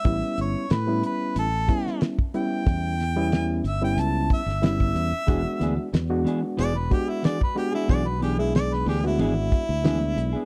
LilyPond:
<<
  \new Staff \with { instrumentName = "Harmonica" } { \time 4/4 \key a \major \tempo 4 = 92 e''8 cis''8 b'8 b'8 a'4 r8 g''8~ | g''4. e''16 g''16 a''8 e''8 e''4~ | e''4 r4 d''16 b'16 g'16 e'16 d''16 b'16 g'16 e'16 | d''16 b'16 g'16 e'16 d''16 b'16 g'16 e'16 e'2 | }
  \new Staff \with { instrumentName = "Clean electric guitar" } { \time 4/4 \key a \major r1 | r1 | <e b d' gis'>16 r16 <e b d' gis'>16 r8. <e b d' gis'>16 r16 <e b d' gis'>16 r8. <e b d' gis'>16 r8 <b d' gis'>16 | <e b d' gis'>16 r16 <e b d' gis'>16 r8. <e b d' gis'>16 r16 <e b d' gis'>16 r8. <e b d' gis'>16 r8 <b d' gis'>16 | }
  \new Staff \with { instrumentName = "Reed electric piano" } { \time 4/4 \key a \major <g b cis' e'>4 r16 <g b cis' e'>4 r16 <g b cis' e'>8. r16 <g b cis' e'>8~ | <g b cis' e'>8 r16 <g b cis' e'>8. r16 <g b cis' e'>4 r16 <g b cis' e'>8. r16 | <gis b d' fis'>4 r16 <gis b d' fis'>4 r16 <gis b d' fis'>8. r16 <gis b d' fis'>8~ | <gis b d' fis'>8 r16 <gis b d' gis'>8. r16 <gis b d' fis'>4 r16 <gis b d' e'>8. r16 | }
  \new Staff \with { instrumentName = "Fingered electric bass" } { \clef bass \time 4/4 \key a \major a,,16 r16 g,,16 r16 a,8 r8 a,,8 r4. | e,4. g,,8 cis,8 r16 g,,8. e,16 r16 | e,,16 r16 d,16 r16 e,8 r8 e,,8 r4. | b,,4. d,8 gis,,8 r16 d,8. b,,16 r16 | }
  \new DrumStaff \with { instrumentName = "Drums" } \drummode { \time 4/4 <hh bd>8 hh8 <hh sn>8 hh8 hh8 <hh bd>16 sn16 <hh sn>16 bd16 hh8 | <hh bd>8 <hh sn>8 <hh sn>8 hh8 hh8 <hh bd>16 sn16 <hh sn>16 bd16 hh8 | <hh bd>8 hh8 <hh sn>8 hh8 hh8 <hh bd>8 <hh sn>16 bd16 hh8 | <hh bd>8 hh8 <hh sn>16 sn16 hho8 hh8 <hh bd>8 <hh sn>8 hh8 | }
>>